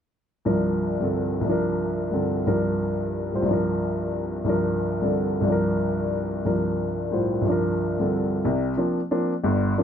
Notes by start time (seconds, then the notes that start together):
0.45 C2 G2 F3 D4 A#4
1.00 G2 D3 C4 A4
1.41 C2 G2
1.46 F3 D4
1.51 A#4
2.11 G2 D3 C4 A4
2.46 C2 G2 F3 D4 A#4
3.33 A2 G3 F4 C5
3.42 C2 G2
3.48 F3 D4
3.53 A#4
4.44 C2 G2 F3
4.49 D4 A#4
5.01 G2 D3 C4 A4
5.41 C2 G2
5.46 F3 D4
5.52 A#4
6.45 C2 G2 F3 D4 A#4
7.11 A2 G3 F4 C5
7.41 C2 G2
7.47 F3 D4
7.51 A#4
7.99 G2 D3 C4 A4
8.45 C2 C3
8.77 F3 A#3 C4 D4
9.11 F3 A#3 C4 D4
9.44 G1 G2
9.78 F3 A#3 C4 D4